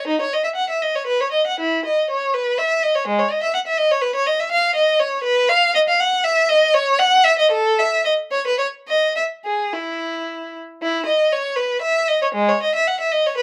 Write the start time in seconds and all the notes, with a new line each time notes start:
0.07 D#4
0.21 C#5
0.33 D#5
0.44 E5
0.56 F#5
0.69 E5
0.82 D#5
0.95 C#5
1.07 B4
1.21 C#5
1.32 D#5
1.47 F#5
1.60 E4
1.85 D#5
2.10 C#5
2.34 B4
2.58 E5
2.83 D#5
2.95 C#5
3.07 G#3
3.19 C#5
3.31 D#5
3.43 E5
3.54 F#5
3.67 E5
3.77 D#5
3.91 C#5
4.01 B4
4.15 C#5
4.26 D#5
4.39 E5
4.52 F5
4.75 D#5
4.99 C#5
5.24 B4
5.49 F5
5.75 D#5
5.88 F5
6.00 F#5
6.24 E5
6.49 D#5
6.74 C#5
6.99 F#5
7.24 E5
7.39 D#5
7.51 A4
7.79 E5
8.05 D#5
8.31 C#5
8.47 B4
8.58 C#5
8.88 D#5
9.16 E5
9.45 G#4
9.73 E4
10.82 E4
11.06 D#5
11.32 C#5
11.56 B4
11.81 E5
12.08 D#5
12.22 C#5
12.35 G#3
12.49 C#5
12.63 D#5
12.75 E5
12.87 F#5
13.00 E5
13.11 D#5
13.26 C#5
13.38 B4